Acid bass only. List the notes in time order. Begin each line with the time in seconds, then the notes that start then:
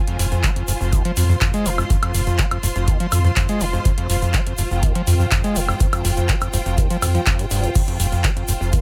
0.07 F2
0.19 F2
0.32 F2
0.44 G#3
0.56 F2
0.68 F2
0.81 F2
0.93 D#2
1.05 F3
1.17 F2
1.29 F2
1.41 F2
1.54 G#3
1.66 C3
1.78 F2
1.90 F2
2.03 F2
2.14 F2
2.27 F2
2.39 G#3
2.51 F2
2.63 F2
2.76 F2
2.88 D#2
3.00 F3
3.12 F2
3.25 F2
3.36 F2
3.49 G#3
3.61 C3
3.73 F2
3.85 F2
3.98 F2
4.10 F2
4.22 F2
4.34 G#3
4.47 F2
4.59 F2
4.71 F2
4.83 D#2
4.95 F3
5.07 F2
5.20 F2
5.32 F2
5.44 G#3
5.56 C3
5.68 F2
5.80 F2
5.93 F2
6.05 F2
6.17 F2
6.29 G#3
6.42 F2
6.54 F2
6.66 F2
6.78 D#2
6.90 F3
7.02 F2
7.15 F3
7.27 F2
7.39 G#2
7.51 G2
7.63 D#2
7.75 F2
7.88 F2
8.00 F2
8.12 F2
8.24 G#3
8.37 F2
8.48 F2
8.61 F2
8.73 D#2